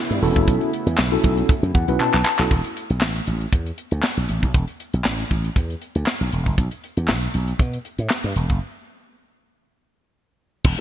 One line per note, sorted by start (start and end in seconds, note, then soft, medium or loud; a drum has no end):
0.00 2.47 C#3 medium
0.00 2.47 A3 medium
0.00 2.47 B3 medium
0.00 2.47 E4 medium
0.11 0.19 G2 loud
0.11 closed hi-hat soft
0.22 0.31 E1 medium
0.22 0.70 C#4 loud
0.22 0.70 E4 medium
0.22 0.70 F#4 medium
0.22 0.70 A4 loud
0.22 open hi-hat medium
0.36 0.44 F#1 medium
0.36 kick medium
0.36 closed hi-hat soft
0.48 0.57 B1 loud
0.48 kick loud
0.48 closed hi-hat medium
0.61 closed hi-hat soft
0.73 closed hi-hat medium
0.86 0.95 E2 medium
0.86 closed hi-hat medium
0.98 1.16 B1 medium
0.98 snare loud
0.98 clap loud
1.12 1.52 C#4 medium
1.12 1.52 E4 medium
1.12 1.52 F#4 medium
1.12 1.52 A4 loud
1.24 1.41 B1 loud
1.24 kick loud
1.24 closed hi-hat medium
1.37 closed hi-hat soft
1.49 kick loud
1.49 closed hi-hat medium
1.63 1.71 F#2 medium
1.63 closed hi-hat soft
1.75 1.84 E2 loud
1.75 1.98 F#5 medium
1.75 kick loud
1.75 closed hi-hat medium
1.88 1.96 B1 medium
1.88 2.15 C#4 medium
1.88 2.15 E4 medium
1.88 2.16 F#4 medium
1.88 2.16 B4 medium
1.88 closed hi-hat medium
2.00 2.09 B2 loud
2.00 2.24 A5 medium
2.00 clap medium
2.14 2.22 B1 medium
2.14 clap medium
2.25 2.49 A5 medium
2.25 clap medium
2.39 2.47 B1 loud
2.39 2.51 C#4 medium
2.39 2.51 E4 medium
2.39 2.51 F#4 medium
2.39 2.51 A4 loud
2.39 clap loud
2.51 2.60 E1 medium
2.51 kick loud
2.51 closed hi-hat medium
2.64 closed hi-hat medium
2.77 closed hi-hat medium
2.90 3.02 B1 medium
2.90 closed hi-hat soft
3.01 3.19 A1 medium
3.01 snare loud
3.01 clap medium
3.16 closed hi-hat soft
3.27 3.45 A1 medium
3.27 closed hi-hat medium
3.41 closed hi-hat soft
3.53 3.70 E2 medium
3.53 kick loud
3.53 closed hi-hat medium
3.66 closed hi-hat soft
3.78 closed hi-hat medium
3.91 4.00 D2 medium
3.91 closed hi-hat medium
4.03 snare loud
4.03 clap medium
4.17 4.25 B1 medium
4.17 closed hi-hat medium
4.29 4.38 A1 medium
4.29 closed hi-hat medium
4.43 4.51 B1 medium
4.43 kick medium
4.43 closed hi-hat soft
4.54 4.64 E1 loud
4.54 kick loud
4.54 closed hi-hat medium
4.68 closed hi-hat medium
4.80 closed hi-hat medium
4.94 5.02 B1 medium
4.94 closed hi-hat medium
5.04 5.23 A1 medium
5.04 snare loud
5.04 clap medium
5.19 closed hi-hat soft
5.31 5.48 A1 medium
5.31 kick medium
5.31 closed hi-hat medium
5.44 closed hi-hat soft
5.56 5.74 E2 loud
5.56 kick loud
5.56 closed hi-hat medium
5.70 closed hi-hat soft
5.82 closed hi-hat medium
5.95 6.04 D2 medium
5.95 closed hi-hat soft
6.06 snare loud
6.06 clap medium
6.21 6.29 B1 medium
6.21 closed hi-hat soft
6.32 6.42 E1 medium
6.32 closed hi-hat medium
6.46 6.54 F#1 medium
6.46 kick medium
6.46 closed hi-hat soft
6.58 6.67 B1 loud
6.58 kick loud
6.58 closed hi-hat medium
6.71 closed hi-hat medium
6.84 closed hi-hat medium
6.97 7.11 E2 medium
6.97 closed hi-hat medium
7.08 7.26 B1 medium
7.08 snare loud
7.08 clap medium
7.22 closed hi-hat soft
7.34 7.52 B1 medium
7.34 closed hi-hat medium
7.48 closed hi-hat soft
7.59 7.77 B2 loud
7.59 kick loud
7.59 closed hi-hat medium
7.73 closed hi-hat soft
7.85 closed hi-hat medium
7.99 8.07 A2 medium
7.99 closed hi-hat medium
8.10 snare loud
8.10 clap medium
8.24 8.32 G2 medium
8.24 closed hi-hat soft
8.36 8.45 E1 medium
8.36 closed hi-hat medium
8.50 8.58 F#1 medium
8.50 kick medium
8.50 closed hi-hat soft
10.65 10.74 E1 loud
10.65 10.80 D3 medium
10.65 10.80 F#3 medium
10.65 10.80 A3 medium
10.65 10.80 E4 medium
10.65 kick loud
10.65 crash loud